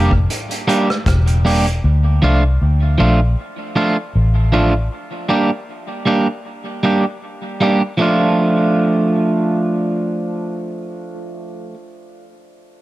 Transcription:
0.00 0.26 F1 medium
0.00 0.10 G3 medium
0.00 0.11 A#3 medium
0.00 0.11 D4 medium
0.00 0.11 G4 loud
0.11 kick medium
0.30 closed hi-hat medium
0.51 closed hi-hat medium
0.68 0.87 G3 medium
0.68 0.88 A#3 medium
0.68 0.88 D4 loud
0.68 0.88 G4 loud
0.68 closed hi-hat medium
0.90 cross-stick medium
1.06 1.79 E1 medium
1.06 kick medium
1.06 cross-stick loud
1.06 closed hi-hat medium
1.27 closed hi-hat soft
1.45 1.65 G3 medium
1.45 1.65 A#3 medium
1.45 1.65 D4 medium
1.45 1.65 G4 medium
1.45 open hi-hat medium
1.66 closed hi-hat soft
1.84 2.19 D2 loud
2.22 2.57 C2 medium
2.22 2.42 F3 medium
2.22 2.42 A3 medium
2.22 2.42 D4 medium
2.22 2.43 F4 medium
2.62 2.96 D2 medium
2.98 3.34 A#1 medium
2.98 3.18 F3 medium
2.98 3.19 A3 medium
2.98 3.19 D4 medium
2.98 3.19 F4 medium
3.76 3.96 F3 medium
3.76 3.96 A3 medium
3.76 3.96 D4 medium
3.76 3.96 F4 loud
4.15 4.88 A1 medium
4.52 4.72 F3 medium
4.52 4.73 A3 medium
4.52 4.73 D4 medium
4.52 4.73 F4 medium
5.29 5.49 G3 medium
5.29 5.49 A#3 medium
5.29 5.50 D4 medium
5.29 5.50 G4 medium
6.06 6.26 G3 medium
6.06 6.27 A#3 medium
6.06 6.27 D4 medium
6.06 6.27 G4 medium
6.83 7.03 G3 medium
6.83 7.04 A#3 medium
6.83 7.04 D4 medium
6.83 7.04 G4 medium
7.61 7.81 G3 medium
7.61 7.81 A#3 medium
7.61 7.81 D4 medium
7.61 7.82 G4 medium
7.97 11.74 F3 medium
7.97 11.75 A3 medium
7.97 11.77 D4 medium
8.02 11.78 F4 medium

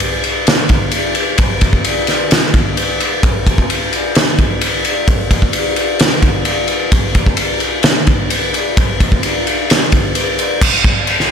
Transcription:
0.00 ride medium
0.24 ride soft
0.47 snare loud
0.47 ride medium
0.69 kick medium
0.69 ride medium
0.92 ride medium
1.15 ride medium
1.38 kick medium
1.38 ride medium
1.61 kick medium
1.61 ride medium
1.73 kick medium
1.84 ride medium
2.07 snare soft
2.07 ride medium
2.31 snare loud
2.31 ride medium
2.54 kick medium
2.54 ride medium
2.77 ride medium
3.00 ride medium
3.23 kick loud
3.23 ride medium
3.47 kick medium
3.47 ride medium
3.58 kick medium
3.70 ride medium
3.93 ride medium
4.15 snare loud
4.15 ride medium
4.39 kick medium
4.39 ride medium
4.61 ride medium
4.85 ride medium
5.08 kick loud
5.08 ride medium
5.31 kick medium
5.31 ride medium
5.42 kick medium
5.53 ride medium
5.76 ride medium
5.99 snare loud
5.99 ride medium
6.22 kick medium
6.22 ride medium
6.45 ride medium
6.68 ride soft
6.92 kick medium
6.92 ride medium
7.15 kick medium
7.15 ride medium
7.26 kick medium
7.37 ride medium
7.60 ride soft
7.83 snare loud
7.83 ride medium
8.07 kick medium
8.07 ride medium
8.30 ride medium
8.54 ride medium
8.77 kick loud
8.77 ride medium
9.00 kick medium
9.00 ride medium
9.12 kick medium
9.23 ride medium
9.47 ride medium
9.70 snare loud
9.70 ride medium
9.92 kick medium
9.92 ride medium
10.15 ride medium
10.39 ride medium
10.62 kick loud
10.62 crash loud
10.62 crash medium
10.84 kick medium
11.07 crash medium
11.20 snare soft

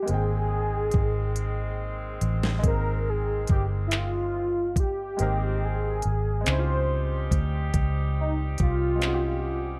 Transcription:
0.00 0.11 A#1 medium
0.00 2.57 G#3 medium
0.00 0.11 G4 loud
0.06 0.90 G#1 loud
0.06 4.72 D#3 medium
0.06 4.72 G#3 medium
0.06 2.58 A#3 medium
0.06 4.72 C4 medium
0.06 2.60 C4 medium
0.06 closed hi-hat medium
0.10 2.61 D#4 medium
0.10 1.79 G#4 loud
0.14 2.62 G5 medium
0.91 2.17 G#1 medium
0.91 kick loud
0.91 closed hi-hat medium
1.36 closed hi-hat medium
2.21 2.60 A1 loud
2.21 closed hi-hat medium
2.43 snare loud
2.59 5.12 G#3 medium
2.59 5.14 A#3 medium
2.64 3.45 G#1 loud
2.64 5.15 C4 medium
2.64 3.11 A#4 loud
2.64 kick loud
2.64 closed hi-hat medium
2.68 5.17 D#4 medium
2.68 5.18 A#4 medium
3.09 3.50 G#4 medium
3.47 5.15 G1 medium
3.47 3.65 G4 loud
3.47 kick loud
3.47 closed hi-hat medium
3.87 3.98 E4 medium
3.91 clap loud
3.91 closed hi-hat medium
3.97 4.79 F4 loud
4.76 5.66 G4 loud
4.76 kick loud
4.76 closed hi-hat medium
5.17 6.01 G#1 loud
5.17 6.02 C3 medium
5.17 6.02 D#3 medium
5.17 6.39 G#3 medium
5.17 6.02 G#3 medium
5.17 6.46 A#3 medium
5.17 6.02 C4 medium
5.17 6.42 C4 medium
5.17 closed hi-hat medium
5.21 6.47 D#4 medium
5.21 6.48 A#4 medium
5.64 6.48 G#4 medium
6.02 6.43 G#1 medium
6.02 closed hi-hat medium
6.41 8.94 G#3 medium
6.41 8.96 C4 medium
6.46 7.28 C#2 loud
6.46 9.80 G3 medium
6.46 9.80 C4 medium
6.46 8.98 C#4 medium
6.46 9.80 D#4 medium
6.46 8.99 D#4 medium
6.46 9.80 G4 medium
6.46 7.40 C5 loud
6.46 clap loud
6.46 closed hi-hat medium
6.52 6.56 E4 medium
6.59 9.04 F4 medium
7.31 7.70 D2 loud
7.31 kick loud
7.31 closed hi-hat medium
7.74 8.55 C#2 loud
7.74 kick loud
7.74 closed hi-hat medium
8.20 8.34 D#4 medium
8.58 9.80 C2 medium
8.58 9.80 F4 loud
8.58 kick loud
8.58 closed hi-hat medium
8.96 9.80 G#3 medium
8.96 9.80 C4 medium
9.02 9.80 C#4 medium
9.02 9.80 D#4 medium
9.02 clap loud
9.02 closed hi-hat medium
9.08 9.11 F#4 medium
9.14 9.80 G4 medium

